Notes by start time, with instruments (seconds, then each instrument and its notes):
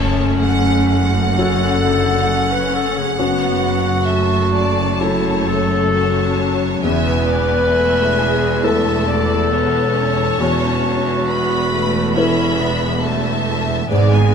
Already playing: double bass section F#1, harp F#2 C#3, cello section F#2, felt piano F#2, viola section A3, clarinet C#4, violin section C#5 A5
0.00 harp A3
0.42 harp A4, violin section F#5
0.91 harp A3, violin section F#5
1.15 harp C#3
1.36 harp F#2, viola section C#4, felt piano C#4 F#4 A4, clarinet A4
1.62 harp A3
1.82 harp C#3, viola section D3
2.27 viola section C#4, harp A4
2.51 clarinet B4
2.74 harp A3, clarinet A4
2.96 harp C#3, clarinet G#4
3.17 double bass section F#1, cello section F#2, harp F#2, felt piano F#2, viola section B3, clarinet F#4, violin section F#5
3.42 harp A3
3.65 harp C#3
4.07 viola section A3, harp A4, violin section E5 A5
4.53 harp A3, violin section D5
4.78 harp C#3
5.00 harp F#2, viola section A3, felt piano C#4 F#4 A4, clarinet E4, violin section C#5
5.26 harp A3
5.48 harp C#3, clarinet A4
5.72 harp C#4
5.92 viola section F#3, harp A4, violin section C#5 A5
6.16 harp C#4
6.39 harp A3
6.61 harp C#3
6.83 double bass section E1, felt piano E2, harp E2, cello section E2, viola section B3, clarinet B4, violin section E5 G#5
7.07 harp B2
7.28 violin section D5
7.51 harp E4
7.73 viola section A3, harp B4, violin section E5
7.97 harp E4
8.19 harp A3, viola section G#4
8.42 harp B2
8.63 harp E2, viola section A3, felt piano E4 A4 B4, clarinet A4, violin section E5 A5
8.86 harp A3
9.08 harp B2, violin section D5
9.31 harp E4
9.52 viola section B3, harp B4, violin section C#5 A5
9.74 harp E4
9.97 viola section C#4
10.18 harp B2
10.39 double bass section E1, cello section E2, felt piano E2, harp E2, clarinet F#4
10.63 harp A3
10.84 harp B2
11.07 harp E4
11.26 viola section B3, violin section B4 B5, harp B4
11.51 harp E4
11.72 viola section A3, harp A3
11.95 harp B2
12.15 harp E2, viola section C#4, felt piano E4 A4 B4, clarinet E4, violin section E5 B5
12.38 harp A3
12.60 harp B2, viola section B3
12.82 harp E4
13.00 viola section A3, harp B4, violin section E5 A5
13.26 harp E4
13.47 harp A3
13.69 harp B2
13.89 double bass section G#1, harp G#2, felt piano G#2, cello section G#2, viola section B3, clarinet G#4, violin section D5 G#5
14.12 harp D3, violin section G#5